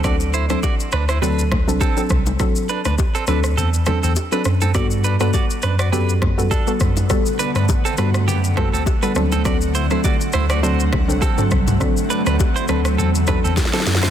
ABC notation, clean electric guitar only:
X:1
M:4/4
L:1/16
Q:"Swing 16ths" 1/4=102
K:G
V:1 name="Clean electric guitar"
[Fd] z [Ec] [Ec] [Fd] z [DB] [Ec] [DB]2 z2 [CA]2 z2 | z2 [DB] [DB] z [CA] [DB] z [CA] z [CA] [CA] z [DB] z [CA] | [Fd] z [DB] [DB] [Fd] z [DB] [Fd] [DB]2 z2 [DA]2 z2 | z2 [DB] [DB] z [CA] [DB] z [B,G] z [CA] [CA] z [DB] z [CA] |
[Fd] z [Ec] [Ec] [Fd] z [Ec] [Fd] [Fc]2 z2 [CA]2 z2 | z2 [DB] [DB] z [Ec] [DB] z [CA] z [DB] [CA] z [CA] z [Ec] |]